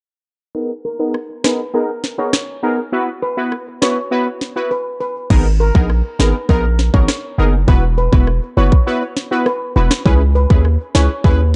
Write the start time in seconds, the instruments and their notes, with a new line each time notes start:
0.55 synth stab B3 D#4 G#4 A#4
0.85 steel pan A#4
0.99 synth stab B3 D#4 G#4 A#4
1.14 cross-stick
1.44 synth stab B3 D#4 G#4 A#4, steel pan B4, cross-stick, snare
1.74 synth stab B3 D#4 G#4 A#4, steel pan A#4
2.04 snare
2.18 synth stab B3 D#4 G#4 A#4, steel pan C#5
2.33 cross-stick, snare
2.63 synth stab B3 D#4 G#4 A#4
2.92 synth stab B3 E4 F#4 B4
3.22 steel pan B4
3.37 synth stab B3 E4 F#4 B4
3.52 cross-stick
3.82 synth stab B3 E4 F#4 B4, steel pan C#5, cross-stick, snare
4.11 synth stab B3 E4 F#4 B4
4.41 snare
4.56 synth stab B3 E4 F#4 B4
4.71 steel pan B4
5.01 steel pan B4
5.30 808-style bass G#1, synth stab B3 D#4 G#4 A#4, kick, crash
5.60 steel pan A#4
5.75 808-style bass A#1, synth stab B3 D#4 G#4 A#4, kick
5.90 cross-stick
6.19 808-style bass G#1, synth stab B3 D#4 G#4 A#4, steel pan B4, cross-stick, snare
6.49 808-style bass A#1, synth stab B3 D#4 G#4 A#4, steel pan A#4, kick
6.79 snare
6.93 808-style bass G#1, synth stab B3 D#4 G#4 A#4, steel pan C#5, kick
7.08 cross-stick, snare
7.38 808-style bass F#1, synth stab B3 D#4 G#4 A#4
7.68 808-style bass E1, synth stab B3 E4 F#4 B4, kick
7.98 steel pan B4
8.12 808-style bass E1, synth stab B3 E4 F#4 B4, kick
8.27 cross-stick
8.57 808-style bass F#1, synth stab B3 E4 F#4 B4, steel pan C#5
8.72 kick
8.86 synth stab B3 E4 F#4 B4
9.17 snare
9.31 synth stab B3 E4 F#4 B4
9.46 steel pan B4, cross-stick
9.76 808-style bass E1, synth stab B3 E4 F#4 B4, steel pan B4
9.91 cross-stick, snare
10.05 808-style bass C#2, synth stab C#4 E4 G#4 B4, kick
10.35 steel pan B4
10.50 808-style bass D#2, synth stab C#4 E4 G#4 B4, kick
10.65 cross-stick
10.95 808-style bass C#2, synth stab C#4 E4 G#4 B4, steel pan C#5, cross-stick, snare
11.24 808-style bass D#2, synth stab C#4 E4 G#4 B4, steel pan B4, kick